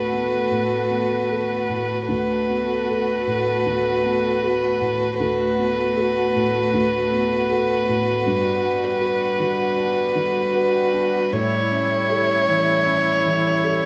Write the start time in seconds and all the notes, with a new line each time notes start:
Already playing: D2 A2 A3 B3 F#4 A4 B4 F#5
0.12 B3
0.51 A2
0.90 B3
1.30 F#4 A4
1.69 A2
2.08 D2 A3 B3 F#4 A4 B4 F#5
2.49 B3
2.89 F#4 A4
3.27 A2
3.66 D2
4.04 B3
4.43 F#4 A4
4.81 A2
5.18 D2 A3 B3 F#4 A4 B4 F#5
5.58 B3
5.97 F#4 A4
6.36 A2
6.74 D2
7.12 B3
7.50 F#4 A4
7.89 A2
8.26 G2 G3
8.63 D4
9.01 F#4 B4
9.39 D3
9.77 D4
10.15 D3
10.54 F#4 B4
10.93 D4
11.33 A2 C#4 E4 C#5 E5
11.71 C#4
12.09 G4 A4
12.48 E3
12.86 C#4
13.25 E3
13.64 G4 A4